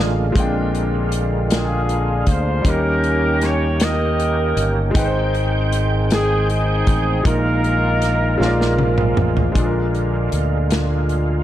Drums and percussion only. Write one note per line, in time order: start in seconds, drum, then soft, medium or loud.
0.36 kick loud
0.36 closed hi-hat medium
0.75 closed hi-hat soft
1.12 closed hi-hat medium
1.50 snare loud
1.50 closed hi-hat medium
1.89 closed hi-hat medium
2.27 kick medium
2.27 closed hi-hat medium
2.65 kick loud
2.65 closed hi-hat medium
3.04 closed hi-hat soft
3.41 snare soft
3.41 closed hi-hat medium
3.80 snare medium
3.80 closed hi-hat medium
4.20 closed hi-hat medium
4.57 closed hi-hat medium
4.95 kick loud
4.95 closed hi-hat medium
5.34 closed hi-hat soft
5.72 closed hi-hat medium
6.10 snare medium
6.10 closed hi-hat medium
6.50 closed hi-hat medium
6.87 kick medium
6.87 closed hi-hat medium
7.25 kick loud
7.25 closed hi-hat medium
7.64 closed hi-hat soft
8.02 snare soft
8.02 closed hi-hat medium
8.42 snare medium
8.61 snare medium
8.79 high tom medium
8.98 mid tom medium
9.17 mid tom medium
9.37 floor tom medium
9.55 kick loud
9.55 closed hi-hat medium
9.95 closed hi-hat soft
10.32 closed hi-hat medium
10.70 snare medium
10.70 closed hi-hat medium
11.09 closed hi-hat soft